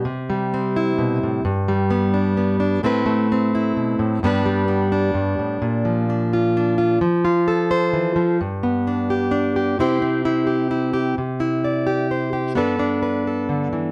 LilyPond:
\new Staff \with { instrumentName = "Steel-string acoustic guitar" } { \time 3/4 \key c \major \tempo 4 = 130 << { r4 c'8 e'4. | r4 b8 d'8 b8 d'8 | <a c' e' b'>4 c'8 e'4. | <g b d' b'>4 b8 d'4.~ |
d'4 d'8 f'8 d'8 f'8 | r4 a'8 c''4. | r4 d'8 g'8 d'8 g'8 | <c' e' g' c''>4 e'8 g'8 e'8 g'8 |
r8 e'8 d''8 g'8 c''8 g'8 | <b d' a' b'>8 d'8 b'8 a'4. | } \\ { c8 g4. b,8 a,8 | g,8 g2~ g8 | a,8 a4. b,8 a,8 | g,8 g4. g,8 a,8 |
bes,8 f2~ f8 | f8 f'4. e8 f8 | g,8 b2~ b8 | c8 c'2~ c'8 |
c2. | g,2 d8 e8 | } >> }